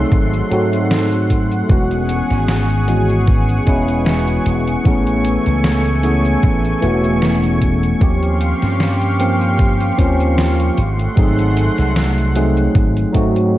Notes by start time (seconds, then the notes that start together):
Already playing: F#3 A3 C4 D#4 G#4 F#5 C6
0.12 G#1, kick, closed hi-hat
0.33 closed hi-hat
0.50 G#2 F#3 A3 C4 D#4 F#4, closed hi-hat
0.73 closed hi-hat
0.91 snare, closed hi-hat
1.12 closed hi-hat
1.30 kick, closed hi-hat
1.52 closed hi-hat
1.68 E1 E3 G#3 B3 C#4 F#4 G#4 C#6, kick, closed hi-hat
1.91 closed hi-hat
2.09 closed hi-hat
2.31 G#1, snare, closed hi-hat
2.48 snare, closed hi-hat
2.70 closed hi-hat
2.87 E3 G#3 B3 C#4 F#4, closed hi-hat
3.09 closed hi-hat
3.27 kick, closed hi-hat
3.49 closed hi-hat
3.66 E1 E3 G#3 B3 C#4 E4, kick, closed hi-hat
3.88 closed hi-hat
4.06 snare, closed hi-hat
4.28 closed hi-hat
4.46 E1, closed hi-hat
4.67 closed hi-hat
4.84 A1 E3 A3 B3 C#4 G#4 G#5, kick, closed hi-hat
5.07 closed hi-hat
5.25 closed hi-hat
5.46 C#2, closed hi-hat
5.64 snare, closed hi-hat
5.85 closed hi-hat
6.03 E3 A3 B3 C#4 G#4, closed hi-hat
6.25 closed hi-hat
6.43 A1, kick, closed hi-hat
6.65 closed hi-hat
6.81 E1 E3 A3 B3 C#4 F#4, closed hi-hat
7.04 closed hi-hat
7.22 snare, closed hi-hat
7.43 closed hi-hat
7.62 kick, closed hi-hat
7.83 closed hi-hat
8.00 D#2 F3 A#3 C4 C#4 G4 F5 C6, kick, closed hi-hat
8.23 closed hi-hat
8.41 closed hi-hat
8.62 G2, snare, closed hi-hat
8.80 snare, closed hi-hat
9.01 closed hi-hat
9.19 F3 A#3 C4 C#4 G4, closed hi-hat
9.41 closed hi-hat
9.59 kick, closed hi-hat
9.81 closed hi-hat
9.98 D#2 F3 A#3 C4 C#4 F4, kick, closed hi-hat
10.20 closed hi-hat
10.38 snare, closed hi-hat
10.60 closed hi-hat
10.78 G#1 A3 F#5 C6, closed hi-hat
10.99 closed hi-hat
11.16 G#1 F#3 A3 C4 D#4 G#4, kick, closed hi-hat
11.39 closed hi-hat
11.57 closed hi-hat
11.78 C2, snare, closed hi-hat
11.96 snare, closed hi-hat
12.18 closed hi-hat
12.35 F#3 A3 C4 D#4 G#4, closed hi-hat
12.57 closed hi-hat
12.75 G#1, kick, closed hi-hat
12.97 closed hi-hat
13.13 G#2 F#3 A3 C4 D#4 F#4, kick, closed hi-hat
13.36 closed hi-hat